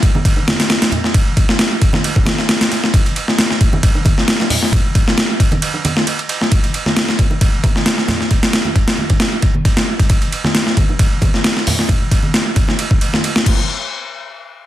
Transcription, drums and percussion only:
0.03 kick loud
0.03 ride medium
0.15 high bongo soft
0.15 high conga medium
0.25 kick loud
0.25 ride medium
0.36 high bongo medium
0.48 snare loud
0.48 ride medium
0.48 high conga medium
0.60 snare loud
0.60 ride medium
0.70 snare loud
0.70 ride medium
0.82 snare loud
0.82 ride medium
0.82 high bongo medium
0.92 ride medium
0.92 low conga medium
1.04 snare soft
1.14 kick loud
1.14 ride medium
1.37 kick loud
1.37 ride medium
1.49 snare medium
1.59 snare loud
1.59 ride medium
1.82 kick loud
1.82 ride medium
1.93 snare soft
1.93 high bongo medium
1.93 high conga loud
2.04 ride medium
2.16 kick loud
2.16 high bongo medium
2.25 snare loud
2.25 ride medium
2.25 high bongo soft
2.25 high conga medium
2.39 snare soft
2.49 snare loud
2.49 ride medium
2.61 snare loud
2.61 ride medium
2.72 snare soft
2.72 ride medium
2.83 snare soft
2.83 high bongo soft
2.94 kick loud
2.94 ride medium
3.06 ride soft
3.16 ride medium
3.28 snare soft
3.38 snare loud
3.38 ride medium
3.51 snare medium
3.61 kick loud
3.61 ride medium
3.73 high bongo medium
3.73 high conga medium
3.83 kick loud
3.83 ride medium
3.95 high bongo medium
4.05 kick loud
4.05 ride medium
4.05 high conga medium
4.18 snare soft
4.28 snare loud
4.28 ride medium
4.40 snare soft
4.40 high bongo medium
4.50 open hi-hat medium
4.50 low conga medium
4.63 snare soft
4.72 kick loud
4.72 ride medium
4.72 low conga medium
4.95 kick loud
4.95 ride medium
5.08 snare medium
5.18 snare loud
5.18 ride medium
5.40 kick loud
5.40 ride medium
5.52 ride soft
5.52 high bongo medium
5.52 high conga medium
5.62 ride medium
5.74 high bongo medium
5.85 ride medium
5.85 high bongo medium
5.85 high conga loud
5.97 snare medium
6.07 ride medium
6.19 ride soft
6.29 ride medium
6.41 snare soft
6.41 high bongo soft
6.52 kick loud
6.52 ride medium
6.64 ride soft
6.74 ride medium
6.86 snare soft
6.86 high conga medium
6.97 snare loud
6.97 ride medium
7.09 snare medium
7.09 high bongo soft
7.19 kick medium
7.19 ride medium
7.19 high conga medium
7.31 high bongo medium
7.41 kick loud
7.41 ride medium
7.64 kick loud
7.64 ride medium
7.64 high conga medium
7.76 snare soft
7.86 snare loud
7.86 ride medium
7.98 snare soft
8.08 snare loud
8.08 ride medium
8.08 high bongo medium
8.08 high conga medium
8.08 low conga medium
8.21 snare soft
8.31 kick medium
8.31 ride medium
8.43 snare loud
8.43 ride medium
8.53 snare loud
8.53 ride medium
8.65 high conga medium
8.76 kick medium
8.76 ride medium
8.88 snare loud
8.88 ride medium
8.98 high conga medium
9.10 kick medium
9.10 ride medium
9.10 high bongo medium
9.20 snare loud
9.20 ride medium
9.42 kick medium
9.42 ride medium
9.55 high conga medium
9.65 kick medium
9.65 ride medium
9.77 snare loud
9.77 ride medium
9.99 kick medium
9.99 ride medium
10.10 kick loud
10.10 ride medium
10.22 ride soft
10.32 ride medium
10.44 snare soft
10.44 high conga medium
10.55 snare loud
10.55 ride medium
10.66 snare medium
10.66 high bongo soft
10.77 kick loud
10.77 ride medium
10.77 high conga medium
10.89 high bongo medium
10.99 kick loud
10.99 ride medium
11.21 kick loud
11.21 ride medium
11.21 high conga medium
11.34 snare soft
11.44 snare loud
11.44 ride medium
11.57 snare soft
11.67 open hi-hat medium
11.67 high bongo medium
11.67 high conga medium
11.67 low conga loud
11.79 snare soft
11.89 kick loud
11.89 ride medium
11.89 low conga medium
12.11 kick loud
12.11 ride medium
12.23 high conga medium
12.34 snare loud
12.34 ride medium
12.56 kick loud
12.56 ride medium
12.56 high conga medium
12.68 snare soft
12.68 high bongo soft
12.79 ride medium
12.91 kick loud
13.01 ride medium
13.13 snare soft
13.13 high conga medium
13.24 ride medium
13.36 snare loud
13.46 kick loud
13.46 crash medium

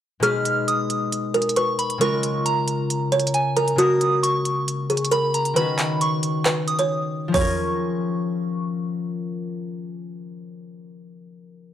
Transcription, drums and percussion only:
0.23 closed hi-hat medium
0.45 closed hi-hat medium
0.68 closed hi-hat medium
0.90 closed hi-hat medium
1.12 closed hi-hat medium
1.34 closed hi-hat soft
1.42 closed hi-hat medium
1.49 closed hi-hat medium
1.56 closed hi-hat medium
1.79 closed hi-hat medium
1.90 closed hi-hat medium
2.01 closed hi-hat medium
2.23 closed hi-hat medium
2.46 closed hi-hat medium
2.68 closed hi-hat medium
2.90 closed hi-hat medium
3.12 closed hi-hat soft
3.20 closed hi-hat medium
3.27 closed hi-hat medium
3.34 closed hi-hat medium
3.57 closed hi-hat medium
3.68 closed hi-hat medium
3.79 closed hi-hat medium
4.01 closed hi-hat medium
4.24 closed hi-hat medium
4.45 closed hi-hat medium
4.68 closed hi-hat medium
4.90 closed hi-hat soft
4.97 closed hi-hat medium
5.05 closed hi-hat medium
5.12 closed hi-hat medium
5.34 closed hi-hat medium
5.45 closed hi-hat medium
5.56 closed hi-hat medium
5.79 clap loud
5.79 closed hi-hat medium
6.01 closed hi-hat medium
6.23 closed hi-hat medium
6.45 clap loud
6.45 closed hi-hat medium
6.68 closed hi-hat medium
6.79 closed hi-hat medium
7.34 kick loud
7.34 floor tom loud
7.34 open hi-hat medium

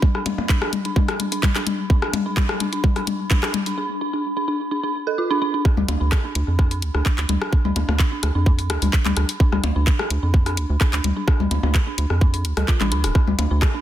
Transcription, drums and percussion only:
0.02 kick loud
0.02 high tom medium
0.15 cross-stick soft
0.26 closed hi-hat medium
0.26 high tom medium
0.26 percussion blips loud
0.38 percussion blips medium
0.49 kick loud
0.49 clap medium
0.49 high tom soft
0.62 cross-stick medium
0.73 closed hi-hat loud
0.73 high tom medium
0.85 closed hi-hat soft
0.96 kick loud
0.96 high tom medium
1.08 cross-stick medium
1.08 closed hi-hat soft
1.20 closed hi-hat medium
1.20 high tom soft
1.32 closed hi-hat soft
1.43 kick loud
1.43 clap loud
1.43 closed hi-hat soft
1.43 high tom medium
1.55 cross-stick soft
1.55 clap medium
1.55 closed hi-hat soft
1.67 closed hi-hat loud
1.67 high tom medium
1.90 kick loud
1.90 high tom soft
2.02 cross-stick medium
2.13 closed hi-hat loud
2.13 high tom medium
2.13 percussion blips medium
2.37 kick loud
2.37 clap medium
2.37 high tom medium
2.49 cross-stick medium
2.60 closed hi-hat medium
2.60 high tom soft
2.73 closed hi-hat soft
2.84 kick loud
2.84 high tom medium
2.96 cross-stick soft
2.96 closed hi-hat soft
3.07 closed hi-hat medium
3.07 high tom medium
3.31 kick loud
3.31 clap medium
3.31 closed hi-hat soft
3.31 high tom soft
3.43 cross-stick medium
3.43 clap medium
3.54 closed hi-hat medium
3.54 high tom medium
3.66 closed hi-hat soft
5.65 kick loud
5.65 cross-stick soft
5.77 high tom medium
5.88 closed hi-hat loud
5.88 percussion blips loud
6.12 kick loud
6.12 cross-stick medium
6.12 clap loud
6.35 closed hi-hat loud
6.59 kick loud
6.59 cross-stick soft
6.71 closed hi-hat soft
6.82 closed hi-hat medium
6.95 cross-stick soft
7.06 kick loud
7.06 clap medium
7.18 clap medium
7.18 closed hi-hat soft
7.29 closed hi-hat medium
7.29 high tom medium
7.42 cross-stick medium
7.53 kick loud
7.65 high tom medium
7.76 closed hi-hat loud
7.76 percussion blips loud
7.89 cross-stick soft
7.89 percussion blips medium
7.99 kick loud
7.99 clap loud
8.23 cross-stick soft
8.23 closed hi-hat loud
8.46 kick loud
8.59 closed hi-hat soft
8.70 cross-stick medium
8.70 closed hi-hat loud
8.82 closed hi-hat medium
8.82 high tom medium
8.93 kick loud
8.93 clap medium
9.05 clap medium
9.05 closed hi-hat soft
9.05 high tom medium
9.17 cross-stick soft
9.17 closed hi-hat medium
9.29 closed hi-hat medium
9.40 kick loud
9.52 cross-stick soft
9.52 high tom medium
9.64 closed hi-hat loud
9.64 percussion blips medium
9.87 kick loud
9.87 clap medium
9.99 cross-stick medium
10.10 closed hi-hat loud
10.34 kick loud
10.46 cross-stick soft
10.46 closed hi-hat soft
10.57 closed hi-hat loud
10.81 kick loud
10.81 cross-stick soft
10.81 clap loud
10.93 clap medium
10.93 closed hi-hat soft
11.04 closed hi-hat loud
11.04 high tom medium
11.28 kick loud
11.28 cross-stick medium
11.40 high tom medium
11.51 closed hi-hat loud
11.51 percussion blips medium
11.63 percussion blips medium
11.74 kick loud
11.74 cross-stick soft
11.74 clap medium
11.98 closed hi-hat loud
12.10 cross-stick soft
12.21 kick loud
12.34 closed hi-hat soft
12.45 closed hi-hat medium
12.57 cross-stick medium
12.57 closed hi-hat soft
12.57 high tom medium
12.68 kick loud
12.68 clap medium
12.81 clap medium
12.81 closed hi-hat soft
12.81 high tom medium
12.92 closed hi-hat loud
13.04 cross-stick soft
13.04 closed hi-hat soft
13.15 kick loud
13.15 cross-stick soft
13.27 high tom medium
13.39 closed hi-hat medium
13.39 percussion blips medium
13.62 kick loud
13.62 cross-stick medium
13.62 clap medium

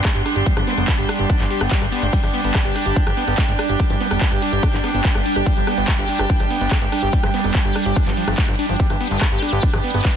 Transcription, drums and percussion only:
0.05 kick loud
0.05 cross-stick medium
0.05 clap loud
0.05 closed hi-hat medium
0.15 closed hi-hat medium
0.26 cross-stick soft
0.26 open hi-hat loud
0.36 closed hi-hat medium
0.46 kick loud
0.46 closed hi-hat medium
0.57 cross-stick medium
0.57 closed hi-hat medium
0.67 open hi-hat loud
0.78 cross-stick soft
0.78 closed hi-hat medium
0.88 kick loud
0.88 clap loud
0.88 closed hi-hat medium
0.98 closed hi-hat medium
1.09 cross-stick medium
1.09 open hi-hat loud
1.19 closed hi-hat medium
1.30 kick loud
1.30 cross-stick soft
1.30 closed hi-hat medium
1.40 clap soft
1.40 closed hi-hat medium
1.51 open hi-hat loud
1.61 cross-stick medium
1.61 closed hi-hat medium
1.71 kick loud
1.71 clap loud
1.71 closed hi-hat medium
1.82 cross-stick soft
1.82 closed hi-hat medium
1.92 open hi-hat loud
2.03 closed hi-hat medium
2.13 kick loud
2.13 closed hi-hat medium
2.13 crash medium
2.23 cross-stick soft
2.23 closed hi-hat medium
2.34 open hi-hat loud
2.44 closed hi-hat medium
2.55 kick loud
2.55 cross-stick medium
2.55 clap loud
2.55 closed hi-hat medium
2.65 closed hi-hat medium
2.76 cross-stick soft
2.76 open hi-hat loud
2.86 closed hi-hat medium
2.96 kick loud
2.96 closed hi-hat medium
3.07 cross-stick medium
3.07 closed hi-hat medium
3.17 open hi-hat loud
3.28 cross-stick soft
3.28 closed hi-hat medium
3.38 kick loud
3.38 clap loud
3.38 closed hi-hat medium
3.48 closed hi-hat medium
3.59 cross-stick medium
3.59 open hi-hat loud
3.69 closed hi-hat medium
3.80 kick loud
3.80 cross-stick soft
3.80 closed hi-hat medium
3.90 closed hi-hat medium
4.01 open hi-hat loud
4.11 cross-stick medium
4.11 closed hi-hat medium
4.21 kick loud
4.21 clap loud
4.21 closed hi-hat medium
4.32 cross-stick soft
4.32 closed hi-hat medium
4.42 open hi-hat loud
4.53 closed hi-hat medium
4.63 kick loud
4.63 cross-stick medium
4.63 closed hi-hat medium
4.73 clap soft
4.73 closed hi-hat medium
4.84 cross-stick soft
4.84 open hi-hat loud
4.94 closed hi-hat medium
5.05 kick loud
5.05 clap loud
5.05 closed hi-hat medium
5.15 cross-stick medium
5.15 closed hi-hat medium
5.26 open hi-hat loud
5.36 cross-stick soft
5.36 closed hi-hat medium
5.46 kick loud
5.46 closed hi-hat medium
5.57 closed hi-hat medium
5.67 cross-stick medium
5.67 open hi-hat loud
5.78 closed hi-hat medium
5.88 kick loud
5.88 cross-stick soft
5.88 clap loud
5.88 closed hi-hat medium
5.98 closed hi-hat medium
6.09 open hi-hat loud
6.19 cross-stick medium
6.19 closed hi-hat medium
6.30 kick loud
6.30 closed hi-hat medium
6.40 cross-stick soft
6.40 closed hi-hat medium
6.51 open hi-hat loud
6.61 closed hi-hat medium
6.71 kick loud
6.71 cross-stick medium
6.71 clap loud
6.71 closed hi-hat medium
6.82 closed hi-hat medium
6.92 cross-stick soft
6.92 open hi-hat loud
7.03 closed hi-hat medium
7.13 kick loud
7.13 closed hi-hat medium
7.23 cross-stick medium
7.23 closed hi-hat medium
7.34 open hi-hat loud
7.44 cross-stick soft
7.44 closed hi-hat medium
7.55 kick loud
7.55 clap loud
7.55 closed hi-hat medium
7.65 closed hi-hat medium
7.76 cross-stick medium
7.76 open hi-hat loud
7.86 closed hi-hat medium
7.96 kick loud
7.96 cross-stick soft
7.96 closed hi-hat medium
8.07 clap soft
8.07 closed hi-hat medium
8.17 open hi-hat loud
8.28 cross-stick medium
8.28 closed hi-hat medium
8.38 kick loud
8.38 clap loud
8.38 closed hi-hat medium
8.48 cross-stick soft
8.48 closed hi-hat medium
8.59 open hi-hat loud
8.69 closed hi-hat medium
8.80 kick loud
8.80 closed hi-hat medium
8.90 cross-stick soft
8.90 closed hi-hat medium
9.01 open hi-hat loud
9.11 closed hi-hat medium
9.21 kick loud
9.21 cross-stick medium
9.21 clap loud
9.21 closed hi-hat medium
9.32 closed hi-hat medium
9.42 cross-stick soft
9.42 open hi-hat loud
9.53 closed hi-hat medium
9.63 kick loud
9.63 closed hi-hat medium
9.73 cross-stick medium
9.73 closed hi-hat medium
9.84 open hi-hat loud
9.94 cross-stick soft
9.94 closed hi-hat medium
10.05 kick loud
10.05 clap loud
10.05 closed hi-hat medium

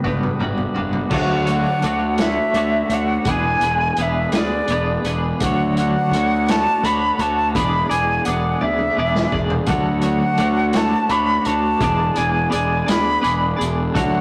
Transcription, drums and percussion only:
0.04 kick medium
0.04 mid tom medium
0.23 mid tom medium
0.40 mid tom medium
0.58 floor tom medium
0.76 floor tom medium
0.93 floor tom medium
1.11 kick loud
1.11 crash loud
1.47 closed hi-hat medium
1.82 closed hi-hat medium
2.18 snare loud
2.18 closed hi-hat medium
2.54 closed hi-hat medium
2.90 closed hi-hat medium
3.25 kick loud
3.25 closed hi-hat medium
3.61 closed hi-hat medium
3.97 closed hi-hat medium
4.32 snare loud
4.32 closed hi-hat loud
4.68 closed hi-hat medium
5.05 closed hi-hat medium
5.40 kick loud
5.40 closed hi-hat loud
5.77 closed hi-hat medium
6.13 closed hi-hat medium
6.48 snare loud
6.48 closed hi-hat loud
6.84 closed hi-hat medium
7.19 closed hi-hat medium
7.55 kick loud
7.55 closed hi-hat medium
7.91 closed hi-hat medium
8.25 closed hi-hat medium
8.61 high tom medium
8.79 high tom medium
9.15 snare medium
9.32 kick medium
9.50 floor tom medium
9.66 kick loud
9.66 closed hi-hat medium
10.01 closed hi-hat medium
10.38 closed hi-hat medium
10.73 snare loud
10.73 closed hi-hat loud
11.09 closed hi-hat medium
11.45 closed hi-hat medium
11.81 kick loud
11.81 closed hi-hat medium
12.16 closed hi-hat medium
12.52 closed hi-hat medium
12.88 snare loud
12.88 closed hi-hat medium
13.24 closed hi-hat medium
13.61 closed hi-hat medium
13.96 kick loud
13.96 closed hi-hat loud

